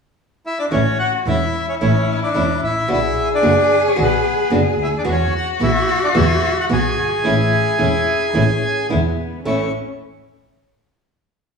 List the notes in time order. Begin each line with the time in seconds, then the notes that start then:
0.46 E4 E5
0.59 D4 D5
0.71 A1 E3 A3 C#4 E4 F#4 C#5
0.99 F#4 F#5
1.26 E1 E3 A3 C#4 E4 E5
1.69 C#4 C#5
1.81 A1 E3 A3 C#4 E4 C#5
2.23 D4 D5
2.34 E1 E3 A3 C#4 E4
2.64 A1 E4 E5
2.88 B1 B2 D3 B3 D4 F#4 G#4
2.93 E4 E5
3.35 D4 D5
3.42 F#1 B2 D3 B3 D4 F#4
3.87 C#4 C#5
3.96 B1 B2 D3 B3 D4 F#4
4.01 B3 B4
4.50 F#1 B2 D3 B3 D4 F#4
4.79 D2 E4
4.84 E5
4.98 D4 D5
5.04 E2 B2 E3 G#3 B3 F#4
5.11 C#4 C#5
5.35 F#4 F#5
5.59 B1 B2 E3 G#3 B3 E4 F#4 E5
6.04 D4 D5
6.14 E2 B2 E3 G#3 B3 E4 F#4 E5
6.60 F#4 F#5
6.69 B1 B2 E3 G#3 B3 F#4 G#4 G#5
6.98 G1
7.24 A1 E3 A3 C#4 E4
7.78 E1 E3 A3 C#4 E4
8.34 A1 E3 A3 C#4 E4
8.89 E2 B2 D3 G#3 B3 E4
9.44 A1 A2 E3 A3 C#4 E4 C#6